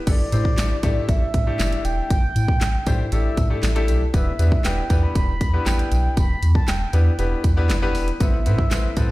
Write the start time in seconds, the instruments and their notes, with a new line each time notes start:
0.07 analog synth bass A1, grand piano A3 D4 E4 G4 A4, soft synth lead D5, kick, closed hi-hat, crash, tambourine
0.32 analog synth bass A2, grand piano A3 D4 E4 G4 C5, closed hi-hat, tambourine
0.45 kick
0.58 analog synth bass A1, grand piano A3 D4 E4 G4 A4, snare, clap, closed hi-hat, tambourine
0.83 analog synth bass A2, grand piano A3 D4 E4 G4 A4, kick, closed hi-hat, tambourine
1.09 analog synth bass A1, soft synth lead E5, kick, closed hi-hat, tambourine
1.34 analog synth bass A2, kick, closed hi-hat
1.47 grand piano A3 D4 E4 G4 A4
1.59 analog synth bass F#1, snare, clap, closed hi-hat, tambourine
1.72 closed hi-hat
1.85 analog synth bass E1, soft synth lead G5, closed hi-hat, tambourine
2.10 analog synth bass A1, soft synth lead G5, kick, closed hi-hat, tambourine
2.36 analog synth bass A2, closed hi-hat, tambourine
2.48 kick
2.61 analog synth bass A1, snare, clap, closed hi-hat, tambourine
2.86 analog synth bass A2, grand piano A3 D4 E4 G4 C5, kick, closed hi-hat, tambourine
3.12 analog synth bass A1, grand piano A3 D4 E4 G4 A4, soft synth lead E5, closed hi-hat, tambourine
3.37 analog synth bass A2, kick, closed hi-hat, tambourine
3.50 grand piano A3 D4 E4 G4 A4
3.63 analog synth bass A1, snare, clap, closed hi-hat, tambourine
3.75 grand piano A3 D4 E4 G4 A4, closed hi-hat
3.88 analog synth bass B1, closed hi-hat, tambourine
4.14 analog synth bass E1, grand piano B3 D4 E4 G4 B4, soft synth lead E5, kick, closed hi-hat, tambourine
4.39 analog synth bass E2, grand piano B3 D4 E4 G4 B4, closed hi-hat, tambourine
4.52 kick
4.64 analog synth bass E1, grand piano B3 D4 E4 G4 B4, soft synth lead G5, snare, clap, closed hi-hat, tambourine
4.90 analog synth bass E2, grand piano B3 D4 E4 G4 B4, kick, closed hi-hat, tambourine
5.03 soft synth lead B5
5.15 analog synth bass E1, soft synth lead B5, kick, closed hi-hat, tambourine
5.41 analog synth bass E2, kick, closed hi-hat, tambourine
5.53 grand piano B3 D4 E4 G4 B4
5.66 analog synth bass A1, soft synth lead G5, snare, clap, closed hi-hat, tambourine
5.79 closed hi-hat
5.92 analog synth bass B1, closed hi-hat, tambourine
6.17 analog synth bass E1, soft synth lead B5, kick, closed hi-hat, tambourine
6.43 analog synth bass E2, closed hi-hat, tambourine
6.55 soft synth lead A5, kick
6.68 analog synth bass E1, soft synth lead G5, snare, clap, closed hi-hat, tambourine
6.93 analog synth bass E2, grand piano B3 D4 E4 G4 B4, closed hi-hat, tambourine
7.19 analog synth bass E1, grand piano B3 D4 E4 G4 B4, closed hi-hat, tambourine
7.44 analog synth bass E2, kick, closed hi-hat, tambourine
7.57 grand piano B3 D4 E4 G4 B4
7.70 analog synth bass F#1, snare, clap, closed hi-hat, tambourine
7.82 grand piano B3 D4 E4 G4 B4
7.95 analog synth bass E1, open hi-hat, tambourine
8.08 closed hi-hat
8.20 analog synth bass A1, synth arpeggio sound A3, grand piano B3 C4 E4 A4 B4, soft synth lead E5, kick, closed hi-hat, tambourine
8.33 synth arpeggio sound B3
8.46 analog synth bass A2, grand piano B3 C4 E4 A4 B4, closed hi-hat, tambourine
8.58 synth arpeggio sound C4, kick
8.71 analog synth bass A1, synth arpeggio sound A3, grand piano B3 C4 E4 A4 B4, snare, clap, closed hi-hat, tambourine
8.96 analog synth bass A2, grand piano B3 C4 E4 A4 B4, soft synth lead A5, kick, closed hi-hat, tambourine